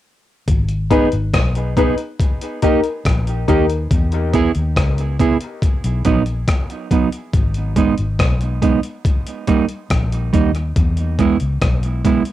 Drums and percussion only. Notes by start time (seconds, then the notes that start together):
0.48 kick, closed hi-hat
0.69 closed hi-hat
0.91 kick, closed hi-hat
1.12 closed hi-hat
1.34 kick, cross-stick, closed hi-hat
1.55 closed hi-hat
1.77 kick, closed hi-hat
1.98 closed hi-hat
2.19 kick, closed hi-hat
2.41 closed hi-hat
2.62 kick, closed hi-hat
2.83 closed hi-hat
3.05 kick, cross-stick, closed hi-hat
3.27 closed hi-hat
3.48 kick, closed hi-hat
3.70 closed hi-hat
3.91 kick, closed hi-hat
4.12 closed hi-hat
4.33 kick, closed hi-hat
4.55 closed hi-hat
4.76 kick, cross-stick, closed hi-hat
4.98 closed hi-hat
5.20 kick, closed hi-hat
5.41 closed hi-hat
5.62 kick, closed hi-hat
5.84 closed hi-hat
6.05 kick, closed hi-hat
6.26 closed hi-hat
6.48 kick, cross-stick, closed hi-hat
6.70 closed hi-hat
6.91 kick, closed hi-hat
7.12 closed hi-hat
7.34 kick, closed hi-hat
7.54 closed hi-hat
7.76 kick, closed hi-hat
7.98 closed hi-hat
8.19 kick, cross-stick, closed hi-hat
8.41 closed hi-hat
8.62 kick, closed hi-hat
8.83 closed hi-hat
9.05 kick, closed hi-hat
9.27 closed hi-hat
9.47 kick, closed hi-hat
9.69 closed hi-hat
9.90 kick, cross-stick, closed hi-hat
10.12 closed hi-hat
10.34 kick, closed hi-hat
10.55 closed hi-hat
10.76 kick, closed hi-hat
10.97 closed hi-hat
11.19 kick, closed hi-hat
11.40 closed hi-hat
11.62 kick, cross-stick, closed hi-hat
11.83 closed hi-hat
12.05 kick, closed hi-hat
12.25 closed hi-hat